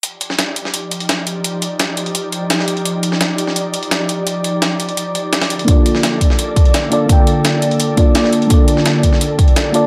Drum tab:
HH |x-x-x-x-x-xxx-x-|x-x-x-xxx-x-x-xx|x-x-x-x-x-xxx-x-|x-x-x-xxx-x-xxxx|
SD |---oo--o----o---|----o-------oo--|---oo--o----o---|----o-------oo--|
BD |----------------|----------------|----------------|----------------|

HH |x-x-x-x-x-xxx-x-|x-x-x-xxx-x-x-xx|x-x-x-x-x-xxx-x-|
SD |---oo--o----o---|----o-------oo--|---oo--o----o---|
BD |o-----o---o-----|o---------o-----|o-----o---o-----|